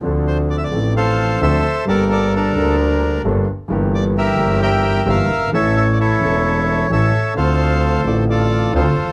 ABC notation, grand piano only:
X:1
M:4/4
L:1/16
Q:1/4=131
K:Dm
V:1 name="Grand piano" clef=bass
[D,,D,F,CDA]6 [A,,,A,,F,CDA]6 [D,,D,F,CDA]2 z2 | [G,,,G,,G,B,DG]6 [D,,D,G,B,DB]6 [G,,,G,,G,B,DA]2 z2 | [G,,,G,,E,G,B,G]6 [G,,,G,,E,G,B,G]6 [G,,,G,,E,G,B,G]2 z/2 ^F,,,/2 G,,,/2 ^G,,,/2 | [A,,,A,,E,A,^CA]6 [E,,,E,,E,A,CA]6 [A,,,A,,E,A,CA]2 z2 |
[D,,D,A,CF]6 [A,,,A,,D,A,CF]6 [D,,D,A,CF]2 z/2 E,,/2 F,,/2 z/2 |]